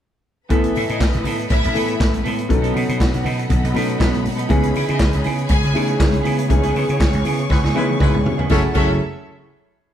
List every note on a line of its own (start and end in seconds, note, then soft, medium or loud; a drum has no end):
0.48 0.70 A1 medium
0.48 1.17 E3 medium
0.48 1.18 A3 medium
0.48 0.73 B3 medium
0.48 1.18 B3 medium
0.48 1.18 E4 medium
0.48 0.73 E4 medium
0.48 2.47 A4 medium
0.48 0.74 A4 loud
0.48 1.18 A4 medium
0.48 2.47 B4 medium
0.48 2.47 B5 medium
0.48 kick loud
0.48 closed hi-hat medium
0.48 muted conga medium
0.64 closed hi-hat soft
0.74 0.86 A2 medium
0.74 0.85 E4 medium
0.74 0.85 E5 medium
0.74 muted clean electric guitar stroke soft
0.74 open hi-hat medium
0.74 muted conga soft
0.87 0.98 A2 medium
0.87 0.98 B3 medium
0.87 1.23 D#4 medium
0.87 0.99 E4 medium
0.87 0.99 A4 medium
0.87 1.22 D#5 medium
0.87 closed hi-hat soft
0.99 1.11 A1 loud
0.99 muted clean electric guitar stroke soft
0.99 kick loud
0.99 snare loud
0.99 clap medium
0.99 high conga medium
1.12 1.23 A1 medium
1.12 muted clean electric guitar stroke soft
1.12 closed hi-hat soft
1.24 1.45 A2 medium
1.24 1.43 B3 medium
1.24 1.38 E4 medium
1.24 1.37 A4 medium
1.24 open hi-hat medium
1.24 low conga medium
1.38 muted clean electric guitar stroke soft
1.38 closed hi-hat soft
1.50 1.61 A1 loud
1.50 1.97 E4 loud
1.50 1.97 E5 loud
1.50 kick loud
1.50 closed hi-hat medium
1.50 muted conga medium
1.62 1.73 A1 medium
1.62 muted clean electric guitar stroke soft
1.62 closed hi-hat soft
1.74 1.95 A2 loud
1.74 2.25 E3 medium
1.74 2.25 A3 medium
1.74 2.25 B3 medium
1.74 1.93 B3 medium
1.74 1.87 E4 medium
1.74 2.25 E4 medium
1.74 2.25 A4 medium
1.74 1.86 A4 medium
1.74 open hi-hat medium
1.74 muted conga soft
1.88 muted clean electric guitar stroke soft
1.88 closed hi-hat soft
2.00 2.20 A1 loud
2.00 kick loud
2.00 snare loud
2.00 clap medium
2.00 high conga medium
2.12 muted clean electric guitar stroke soft
2.12 closed hi-hat soft
2.12 high conga medium
2.23 2.52 A2 medium
2.23 2.43 B3 medium
2.23 2.38 E4 medium
2.23 2.36 A4 medium
2.23 open hi-hat medium
2.23 high conga medium
2.37 muted clean electric guitar stroke medium
2.37 closed hi-hat soft
2.49 2.70 B1 medium
2.49 3.17 F#3 medium
2.49 3.17 B3 medium
2.49 3.17 C#4 medium
2.49 3.18 D#4 medium
2.49 4.48 A4 medium
2.49 3.18 A4 loud
2.49 4.48 D#5 medium
2.49 4.48 F#5 medium
2.49 6.46 B5 medium
2.49 muted clean electric guitar stroke soft
2.49 kick loud
2.49 closed hi-hat medium
2.49 muted conga medium
2.62 2.72 B3 medium
2.62 2.73 D#4 medium
2.62 2.74 A4 medium
2.62 closed hi-hat soft
2.73 2.86 B2 medium
2.73 2.89 B3 medium
2.73 2.88 D#4 medium
2.73 2.87 B4 medium
2.73 open hi-hat medium
2.73 muted conga soft
2.88 2.98 B2 medium
2.88 muted clean electric guitar stroke medium
2.88 closed hi-hat medium
3.00 3.11 B1 loud
3.00 kick loud
3.00 snare loud
3.00 clap medium
3.00 high conga medium
3.13 3.23 B1 loud
3.13 muted clean electric guitar stroke soft
3.13 closed hi-hat soft
3.23 3.45 B2 medium
3.23 3.43 B3 medium
3.23 3.37 D#4 medium
3.23 3.37 A4 medium
3.23 open hi-hat medium
3.23 low conga medium
3.38 muted clean electric guitar stroke soft
3.38 closed hi-hat soft
3.49 3.61 B1 medium
3.49 muted clean electric guitar stroke soft
3.49 kick loud
3.49 closed hi-hat medium
3.49 muted conga medium
3.49 low conga medium
3.62 3.73 B1 medium
3.62 3.72 B3 soft
3.62 3.73 D#4 soft
3.62 3.74 A4 medium
3.62 closed hi-hat soft
3.73 3.95 B2 loud
3.73 4.25 F#3 medium
3.73 3.93 B3 medium
3.73 4.25 B3 medium
3.73 4.25 C#4 medium
3.73 3.87 D#4 medium
3.73 4.26 D#4 medium
3.73 4.26 A4 medium
3.73 3.87 B4 medium
3.73 open hi-hat medium
3.73 muted conga medium
3.88 muted clean electric guitar stroke medium
3.88 closed hi-hat soft
3.98 4.28 B1 medium
3.98 4.17 B3 medium
3.98 4.12 D#4 medium
3.98 4.11 B4 medium
3.98 kick loud
3.98 snare loud
3.98 clap medium
3.98 high conga medium
4.12 muted clean electric guitar stroke soft
4.12 closed hi-hat soft
4.12 high conga medium
4.23 4.45 B2 medium
4.23 muted clean electric guitar stroke soft
4.23 open hi-hat medium
4.23 high conga medium
4.36 4.47 B3 medium
4.36 4.49 D#4 medium
4.36 4.49 A4 medium
4.36 closed hi-hat medium
4.48 4.70 C#2 loud
4.48 5.17 E3 medium
4.48 4.72 B3 medium
4.48 5.17 B3 medium
4.48 5.17 C#4 medium
4.48 5.18 D#4 medium
4.48 4.73 E4 medium
4.48 8.45 G#4 medium
4.48 4.73 G#4 medium
4.48 5.18 G#4 loud
4.48 8.45 C#5 medium
4.48 8.45 G#5 medium
4.48 kick loud
4.48 closed hi-hat medium
4.48 muted conga medium
4.63 closed hi-hat medium
4.73 4.86 C#3 medium
4.73 4.85 E4 medium
4.73 4.85 E5 medium
4.73 muted clean electric guitar stroke soft
4.73 open hi-hat medium
4.73 muted conga soft
4.87 4.98 C#3 medium
4.87 4.97 B3 medium
4.87 5.23 D#4 medium
4.87 4.97 E4 medium
4.87 4.97 G#4 medium
4.87 5.23 D#5 medium
4.87 closed hi-hat soft
4.98 5.10 C#2 medium
4.98 muted clean electric guitar stroke soft
4.98 kick loud
4.98 snare loud
4.98 clap loud
4.98 high conga medium
5.12 5.23 C#2 medium
5.12 muted clean electric guitar stroke soft
5.12 closed hi-hat medium
5.23 5.45 C#3 loud
5.23 5.42 B3 medium
5.23 5.35 E4 medium
5.23 5.34 G#4 medium
5.23 open hi-hat medium
5.23 low conga medium
5.35 muted clean electric guitar stroke soft
5.35 closed hi-hat soft
5.48 5.60 C#2 loud
5.48 5.96 G#4 loud
5.48 5.96 G#5 loud
5.48 kick loud
5.48 closed hi-hat medium
5.48 muted conga medium
5.61 5.73 C#2 loud
5.61 muted clean electric guitar stroke soft
5.61 closed hi-hat soft
5.73 5.95 C#3 loud
5.73 6.25 E3 medium
5.73 5.92 B3 medium
5.73 6.25 B3 medium
5.73 6.25 C#4 medium
5.73 6.26 D#4 medium
5.73 5.86 E4 medium
5.73 5.85 G#4 medium
5.73 6.26 G#4 medium
5.73 open hi-hat medium
5.73 muted conga soft
5.86 muted clean electric guitar stroke medium
5.86 closed hi-hat soft
6.00 6.20 C#2 loud
6.00 kick loud
6.00 snare loud
6.00 clap loud
6.00 high conga medium
6.11 muted clean electric guitar stroke soft
6.11 closed hi-hat soft
6.11 high conga medium
6.22 6.52 C#3 medium
6.22 6.42 B3 medium
6.22 6.36 E4 loud
6.22 6.36 G#4 medium
6.22 open hi-hat medium
6.22 high conga medium
6.37 muted clean electric guitar stroke soft
6.37 closed hi-hat medium
6.49 6.70 C#2 loud
6.49 7.17 E3 medium
6.49 7.17 B3 medium
6.49 7.18 C#4 medium
6.49 7.18 D#4 medium
6.49 7.18 G#4 loud
6.49 8.48 C#6 loud
6.49 muted clean electric guitar stroke soft
6.49 kick loud
6.49 closed hi-hat medium
6.49 muted conga medium
6.63 6.73 B3 medium
6.63 6.74 E4 medium
6.63 6.76 G#4 loud
6.63 closed hi-hat medium
6.74 6.86 C#3 loud
6.74 6.90 B3 medium
6.74 6.88 E4 medium
6.74 6.88 B4 medium
6.74 open hi-hat medium
6.74 muted conga soft
6.88 6.98 C#3 medium
6.88 muted clean electric guitar stroke medium
6.88 closed hi-hat soft
7.00 7.11 C#2 loud
7.00 kick loud
7.00 snare loud
7.00 clap medium
7.00 high conga medium
7.13 7.23 C#2 medium
7.13 muted clean electric guitar stroke medium
7.13 closed hi-hat soft
7.25 7.45 C#3 loud
7.25 7.43 B3 medium
7.25 7.38 E4 medium
7.25 7.37 G#4 medium
7.25 open hi-hat medium
7.25 low conga medium
7.38 muted clean electric guitar stroke soft
7.38 closed hi-hat soft
7.50 7.61 C#2 loud
7.50 7.58 G#3 medium
7.50 7.58 B3 medium
7.50 7.58 E4 medium
7.50 7.58 B4 medium
7.50 muted clean electric guitar stroke soft
7.50 kick loud
7.50 snare medium
7.50 muted conga medium
7.50 low conga medium
7.63 7.72 C#2 medium
7.63 7.75 B3 soft
7.63 7.76 E4 medium
7.63 7.77 G#4 medium
7.63 snare medium
7.74 7.95 C#3 medium
7.74 8.25 E3 medium
7.74 7.83 G#3 medium
7.74 7.83 B3 medium
7.74 8.25 B3 medium
7.74 7.94 B3 medium
7.74 8.25 C#4 medium
7.74 8.26 D#4 medium
7.74 7.83 E4 medium
7.74 7.88 E4 medium
7.74 8.26 G#4 medium
7.74 7.83 B4 medium
7.74 7.88 B4 loud
7.74 high tom medium
7.74 muted conga medium
7.88 muted clean electric guitar stroke soft
7.88 high tom medium
8.00 8.27 C#2 loud
8.00 8.16 G#3 medium
8.00 8.18 B3 medium
8.00 8.16 B3 medium
8.00 8.16 E4 medium
8.00 8.14 E4 medium
8.00 8.16 B4 loud
8.00 8.14 B4 medium
8.00 kick loud
8.00 mid tom medium
8.00 high conga medium
8.13 muted clean electric guitar stroke medium
8.13 mid tom medium
8.13 high conga medium
8.25 8.45 C#3 medium
8.25 muted clean electric guitar stroke soft
8.25 floor tom medium
8.25 high conga medium
8.38 8.49 B3 medium
8.38 8.49 E4 medium
8.38 8.51 G#4 medium
8.38 floor tom loud
8.49 8.65 F#1 medium
8.49 8.65 F#3 medium
8.49 8.60 A3 loud
8.49 8.65 A3 medium
8.49 8.60 C#4 loud
8.49 8.65 C#4 medium
8.49 8.64 C#4 medium
8.49 8.65 C#4 medium
8.49 8.73 E4 medium
8.49 8.66 E4 medium
8.49 8.65 E4 medium
8.49 8.60 F#4 medium
8.49 8.73 F#4 medium
8.49 8.65 G#4 loud
8.49 8.64 A4 medium
8.49 8.73 A4 medium
8.49 8.66 A4 medium
8.49 8.60 C#5 loud
8.49 8.73 C#5 medium
8.49 8.64 E5 medium
8.49 8.73 F#5 medium
8.49 kick loud
8.49 snare medium
8.49 muted conga medium
8.74 8.98 F#1 loud
8.74 8.99 F#3 medium
8.74 8.92 A3 medium
8.74 8.99 A3 medium
8.74 8.92 C#4 medium
8.74 8.90 C#4 medium
8.74 8.98 C#4 medium
8.74 8.99 C#4 medium
8.74 8.91 E4 medium
8.74 8.99 E4 medium
8.74 8.92 F#4 medium
8.74 8.99 G#4 medium
8.74 8.98 A4 medium
8.74 8.91 A4 loud
8.74 8.92 C#5 medium
8.74 8.98 E5 medium
8.74 kick loud
8.74 crash medium
8.74 muted conga medium